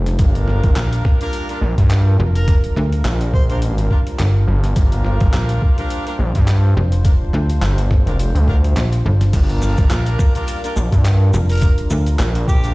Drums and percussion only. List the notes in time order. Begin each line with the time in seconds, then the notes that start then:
0.06 snare, closed hi-hat
0.19 kick, closed hi-hat
0.35 closed hi-hat
0.48 snare
0.63 kick, closed hi-hat
0.76 clap, closed hi-hat
0.93 closed hi-hat
1.05 kick, snare
1.21 closed hi-hat
1.33 closed hi-hat
1.49 closed hi-hat
1.78 kick, closed hi-hat
1.90 clap, closed hi-hat
2.35 closed hi-hat
2.48 kick, closed hi-hat
2.64 closed hi-hat
2.76 snare
2.92 closed hi-hat
3.05 clap, closed hi-hat
3.21 closed hi-hat
3.34 kick
3.50 closed hi-hat
3.62 closed hi-hat
3.78 closed hi-hat
3.91 kick
4.07 closed hi-hat
4.19 clap, closed hi-hat
4.64 snare, closed hi-hat
4.76 kick, closed hi-hat
4.92 closed hi-hat
5.05 snare
5.21 kick, closed hi-hat
5.33 clap, closed hi-hat
5.49 closed hi-hat
5.62 kick
5.78 closed hi-hat
5.90 closed hi-hat
6.07 closed hi-hat
6.35 kick, closed hi-hat
6.48 clap, closed hi-hat
6.92 closed hi-hat
7.05 kick, closed hi-hat
7.33 snare
7.50 closed hi-hat
7.62 clap, closed hi-hat
7.78 closed hi-hat
7.91 kick, snare
8.07 closed hi-hat
8.19 closed hi-hat
8.36 closed hi-hat
8.48 kick
8.64 closed hi-hat
8.77 clap, closed hi-hat
8.93 closed hi-hat
9.21 snare, closed hi-hat
9.33 kick, closed hi-hat, crash, maracas
9.49 closed hi-hat
9.62 snare, maracas
9.77 kick, closed hi-hat, maracas
9.90 clap, closed hi-hat, maracas
10.06 closed hi-hat
10.19 kick, snare, maracas
10.35 closed hi-hat, maracas
10.48 closed hi-hat, maracas
10.64 closed hi-hat, maracas
10.76 maracas
10.92 kick, closed hi-hat, maracas
11.05 clap, closed hi-hat, maracas
11.34 maracas
11.49 closed hi-hat, maracas
11.52 closed hi-hat
11.55 closed hi-hat
11.57 closed hi-hat
11.59 closed hi-hat
11.61 kick, closed hi-hat, maracas
11.78 closed hi-hat
11.90 snare, maracas
12.06 closed hi-hat, maracas
12.19 clap, closed hi-hat, maracas
12.35 closed hi-hat
12.48 kick, maracas
12.64 closed hi-hat, maracas